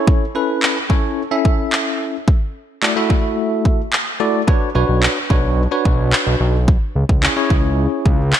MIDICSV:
0, 0, Header, 1, 4, 480
1, 0, Start_track
1, 0, Tempo, 550459
1, 65, Time_signature, 4, 2, 24, 8
1, 7324, End_track
2, 0, Start_track
2, 0, Title_t, "Tine electric piano"
2, 0, Program_c, 0, 4
2, 0, Note_on_c, 0, 61, 89
2, 0, Note_on_c, 0, 64, 83
2, 0, Note_on_c, 0, 69, 77
2, 0, Note_on_c, 0, 73, 99
2, 208, Note_off_c, 0, 61, 0
2, 208, Note_off_c, 0, 64, 0
2, 210, Note_off_c, 0, 69, 0
2, 210, Note_off_c, 0, 73, 0
2, 305, Note_on_c, 0, 61, 79
2, 307, Note_on_c, 0, 64, 74
2, 308, Note_on_c, 0, 69, 75
2, 310, Note_on_c, 0, 71, 89
2, 672, Note_off_c, 0, 61, 0
2, 672, Note_off_c, 0, 64, 0
2, 673, Note_off_c, 0, 69, 0
2, 674, Note_off_c, 0, 71, 0
2, 781, Note_on_c, 0, 61, 87
2, 783, Note_on_c, 0, 64, 77
2, 783, Note_on_c, 0, 69, 78
2, 785, Note_on_c, 0, 73, 92
2, 1058, Note_off_c, 0, 61, 0
2, 1059, Note_off_c, 0, 64, 0
2, 1059, Note_off_c, 0, 69, 0
2, 1060, Note_off_c, 0, 73, 0
2, 1142, Note_on_c, 0, 61, 85
2, 1145, Note_on_c, 0, 64, 74
2, 1147, Note_on_c, 0, 69, 76
2, 1147, Note_on_c, 0, 76, 88
2, 1878, Note_off_c, 0, 61, 0
2, 1879, Note_off_c, 0, 64, 0
2, 1880, Note_off_c, 0, 69, 0
2, 1880, Note_off_c, 0, 76, 0
2, 2462, Note_on_c, 0, 57, 78
2, 2463, Note_on_c, 0, 64, 74
2, 2464, Note_on_c, 0, 66, 73
2, 2465, Note_on_c, 0, 69, 75
2, 2467, Note_on_c, 0, 74, 89
2, 2555, Note_off_c, 0, 57, 0
2, 2556, Note_off_c, 0, 64, 0
2, 2556, Note_off_c, 0, 66, 0
2, 2557, Note_off_c, 0, 69, 0
2, 2558, Note_off_c, 0, 74, 0
2, 2584, Note_on_c, 0, 57, 77
2, 2585, Note_on_c, 0, 64, 75
2, 2586, Note_on_c, 0, 66, 72
2, 2586, Note_on_c, 0, 69, 73
2, 2588, Note_on_c, 0, 76, 87
2, 3318, Note_off_c, 0, 57, 0
2, 3319, Note_off_c, 0, 64, 0
2, 3319, Note_off_c, 0, 66, 0
2, 3319, Note_off_c, 0, 69, 0
2, 3320, Note_off_c, 0, 76, 0
2, 3661, Note_on_c, 0, 57, 92
2, 3661, Note_on_c, 0, 64, 80
2, 3662, Note_on_c, 0, 66, 83
2, 3663, Note_on_c, 0, 69, 83
2, 3665, Note_on_c, 0, 74, 104
2, 3846, Note_off_c, 0, 57, 0
2, 3846, Note_off_c, 0, 64, 0
2, 3847, Note_off_c, 0, 66, 0
2, 3847, Note_off_c, 0, 69, 0
2, 3848, Note_off_c, 0, 74, 0
2, 3902, Note_on_c, 0, 62, 93
2, 3902, Note_on_c, 0, 66, 83
2, 3904, Note_on_c, 0, 71, 84
2, 3905, Note_on_c, 0, 73, 104
2, 4087, Note_off_c, 0, 62, 0
2, 4087, Note_off_c, 0, 66, 0
2, 4087, Note_off_c, 0, 71, 0
2, 4088, Note_off_c, 0, 73, 0
2, 4141, Note_on_c, 0, 62, 79
2, 4143, Note_on_c, 0, 66, 70
2, 4145, Note_on_c, 0, 71, 76
2, 4146, Note_on_c, 0, 73, 93
2, 4510, Note_off_c, 0, 62, 0
2, 4511, Note_off_c, 0, 66, 0
2, 4512, Note_off_c, 0, 71, 0
2, 4512, Note_off_c, 0, 73, 0
2, 4622, Note_on_c, 0, 62, 87
2, 4623, Note_on_c, 0, 66, 76
2, 4624, Note_on_c, 0, 71, 78
2, 4626, Note_on_c, 0, 73, 98
2, 4899, Note_off_c, 0, 62, 0
2, 4899, Note_off_c, 0, 66, 0
2, 4899, Note_off_c, 0, 71, 0
2, 4900, Note_off_c, 0, 73, 0
2, 4982, Note_on_c, 0, 62, 81
2, 4985, Note_on_c, 0, 66, 78
2, 4986, Note_on_c, 0, 71, 76
2, 4987, Note_on_c, 0, 73, 91
2, 5717, Note_off_c, 0, 62, 0
2, 5719, Note_off_c, 0, 66, 0
2, 5719, Note_off_c, 0, 71, 0
2, 5720, Note_off_c, 0, 73, 0
2, 6302, Note_on_c, 0, 61, 79
2, 6304, Note_on_c, 0, 64, 76
2, 6305, Note_on_c, 0, 68, 76
2, 6307, Note_on_c, 0, 73, 90
2, 6395, Note_off_c, 0, 61, 0
2, 6396, Note_off_c, 0, 64, 0
2, 6397, Note_off_c, 0, 68, 0
2, 6398, Note_off_c, 0, 73, 0
2, 6422, Note_on_c, 0, 61, 81
2, 6422, Note_on_c, 0, 64, 74
2, 6423, Note_on_c, 0, 68, 76
2, 6425, Note_on_c, 0, 73, 90
2, 7157, Note_off_c, 0, 61, 0
2, 7157, Note_off_c, 0, 64, 0
2, 7158, Note_off_c, 0, 68, 0
2, 7159, Note_off_c, 0, 73, 0
2, 7324, End_track
3, 0, Start_track
3, 0, Title_t, "Analog synth bass"
3, 0, Program_c, 1, 38
3, 4144, Note_on_c, 1, 35, 92
3, 4225, Note_off_c, 1, 35, 0
3, 4264, Note_on_c, 1, 35, 90
3, 4426, Note_off_c, 1, 35, 0
3, 4624, Note_on_c, 1, 35, 86
3, 4947, Note_off_c, 1, 35, 0
3, 5104, Note_on_c, 1, 35, 100
3, 5346, Note_off_c, 1, 35, 0
3, 5464, Note_on_c, 1, 35, 83
3, 5545, Note_off_c, 1, 35, 0
3, 5585, Note_on_c, 1, 35, 90
3, 5908, Note_off_c, 1, 35, 0
3, 6065, Note_on_c, 1, 37, 83
3, 6145, Note_off_c, 1, 37, 0
3, 6185, Note_on_c, 1, 37, 87
3, 6346, Note_off_c, 1, 37, 0
3, 6544, Note_on_c, 1, 37, 88
3, 6866, Note_off_c, 1, 37, 0
3, 7024, Note_on_c, 1, 37, 99
3, 7266, Note_off_c, 1, 37, 0
3, 7324, End_track
4, 0, Start_track
4, 0, Title_t, "Drums"
4, 65, Note_on_c, 9, 36, 119
4, 152, Note_off_c, 9, 36, 0
4, 545, Note_on_c, 9, 39, 103
4, 633, Note_off_c, 9, 39, 0
4, 783, Note_on_c, 9, 36, 89
4, 871, Note_off_c, 9, 36, 0
4, 1265, Note_on_c, 9, 36, 88
4, 1352, Note_off_c, 9, 36, 0
4, 1505, Note_on_c, 9, 39, 101
4, 1592, Note_off_c, 9, 39, 0
4, 1985, Note_on_c, 9, 36, 117
4, 2073, Note_off_c, 9, 36, 0
4, 2466, Note_on_c, 9, 39, 101
4, 2554, Note_off_c, 9, 39, 0
4, 2704, Note_on_c, 9, 36, 90
4, 2791, Note_off_c, 9, 36, 0
4, 3185, Note_on_c, 9, 36, 87
4, 3272, Note_off_c, 9, 36, 0
4, 3426, Note_on_c, 9, 39, 100
4, 3513, Note_off_c, 9, 39, 0
4, 3905, Note_on_c, 9, 36, 119
4, 3992, Note_off_c, 9, 36, 0
4, 4385, Note_on_c, 9, 39, 101
4, 4473, Note_off_c, 9, 39, 0
4, 4623, Note_on_c, 9, 36, 94
4, 4710, Note_off_c, 9, 36, 0
4, 5104, Note_on_c, 9, 36, 88
4, 5191, Note_off_c, 9, 36, 0
4, 5343, Note_on_c, 9, 39, 103
4, 5430, Note_off_c, 9, 39, 0
4, 5825, Note_on_c, 9, 36, 121
4, 5912, Note_off_c, 9, 36, 0
4, 6185, Note_on_c, 9, 36, 91
4, 6272, Note_off_c, 9, 36, 0
4, 6306, Note_on_c, 9, 39, 102
4, 6393, Note_off_c, 9, 39, 0
4, 6543, Note_on_c, 9, 36, 89
4, 6630, Note_off_c, 9, 36, 0
4, 7024, Note_on_c, 9, 36, 87
4, 7111, Note_off_c, 9, 36, 0
4, 7263, Note_on_c, 9, 39, 97
4, 7324, Note_off_c, 9, 39, 0
4, 7324, End_track
0, 0, End_of_file